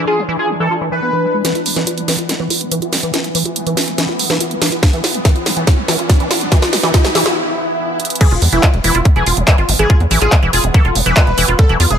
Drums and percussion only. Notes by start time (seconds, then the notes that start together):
1.45 snare, closed hi-hat
1.55 closed hi-hat
1.66 open hi-hat
1.76 snare, closed hi-hat
1.87 closed hi-hat
1.98 closed hi-hat
2.08 snare, open hi-hat
2.19 closed hi-hat
2.29 snare, closed hi-hat
2.50 open hi-hat
2.61 closed hi-hat
2.72 closed hi-hat
2.82 closed hi-hat
2.93 snare, open hi-hat
3.03 closed hi-hat
3.14 snare, closed hi-hat
3.24 closed hi-hat
3.35 open hi-hat
3.45 closed hi-hat
3.56 closed hi-hat
3.67 closed hi-hat
3.77 snare, open hi-hat
3.88 closed hi-hat
3.98 snare, closed hi-hat
4.19 open hi-hat
4.30 snare, closed hi-hat
4.41 closed hi-hat
4.51 closed hi-hat
4.62 snare, open hi-hat
4.72 closed hi-hat
4.83 kick, snare, closed hi-hat
4.93 closed hi-hat
5.04 snare, open hi-hat
5.14 closed hi-hat
5.25 kick, snare, closed hi-hat
5.36 closed hi-hat
5.46 snare, open hi-hat
5.57 closed hi-hat
5.67 kick, snare, closed hi-hat
5.88 snare, open hi-hat
5.99 closed hi-hat
6.10 kick, snare, closed hi-hat
6.20 closed hi-hat
6.31 snare, open hi-hat
6.41 closed hi-hat
6.52 kick, snare, closed hi-hat
6.62 snare, closed hi-hat
6.73 snare, open hi-hat
6.83 snare, closed hi-hat
6.94 kick, snare, closed hi-hat
7.05 snare, closed hi-hat
7.15 snare, open hi-hat
7.26 snare
8.00 closed hi-hat
8.05 closed hi-hat
8.10 closed hi-hat
8.16 closed hi-hat
8.21 kick, crash
8.31 closed hi-hat
8.42 open hi-hat
8.53 closed hi-hat
8.63 kick, clap, closed hi-hat
8.74 closed hi-hat
8.84 open hi-hat
8.95 closed hi-hat
9.05 kick, closed hi-hat
9.16 closed hi-hat
9.26 open hi-hat
9.37 closed hi-hat
9.48 kick, clap, closed hi-hat
9.58 closed hi-hat
9.69 open hi-hat
9.79 closed hi-hat
9.90 kick, closed hi-hat
10.00 closed hi-hat
10.11 open hi-hat
10.22 clap, closed hi-hat
10.32 kick, clap, closed hi-hat
10.43 closed hi-hat
10.53 open hi-hat
10.64 closed hi-hat
10.74 kick, closed hi-hat
10.85 closed hi-hat
10.95 open hi-hat
11.06 closed hi-hat
11.17 kick, clap, closed hi-hat
11.27 closed hi-hat
11.38 open hi-hat
11.48 closed hi-hat
11.59 kick, closed hi-hat
11.69 closed hi-hat
11.80 open hi-hat
11.91 closed hi-hat